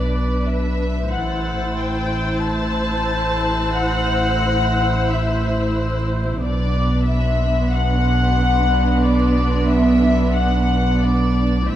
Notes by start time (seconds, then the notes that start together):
Already playing: B1 B2 D4 B4 D5
0.47 E5
1.12 A1 A2 E4 C5 F#5 E6 A6
1.79 G5 F#6
2.45 A5
3.77 F#5
3.83 A#6
5.09 E5
6.40 B1 B2 B3 D4 D5 B5 F#6
7.06 E5 C6
7.73 F#5
9.05 D5
9.70 E5
10.35 F#5
11.02 D5
11.68 A1 A2 E4 C5 E5 A5